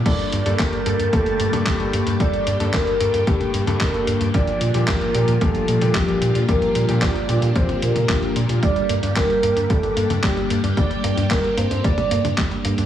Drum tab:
CC |x---------------|----------------|----------------|----------------|
HH |xxxxxxxxxxxxxxxx|xxxxxxxxxxxxxxxx|xxxxxxxxxxxxxxxx|xxxxxxxxxxxxxxxx|
CP |----x-------x---|----x-------x---|----x-------x---|----x-------x---|
T1 |-----------o----|---------o-o----|-----------o----|---------o-o----|
BD |o---o---o---o---|o---o---o---o---|o---o---o---o---|o---o---o---o---|

CC |----------------|----------------|
HH |xxxxxxxxxxxxxxxx|xxxxxxxxxxxxxxxx|
CP |----x-------x---|----x-------x---|
T1 |-----------o----|---------o-o----|
BD |o---o---o---o---|o---o---o---o---|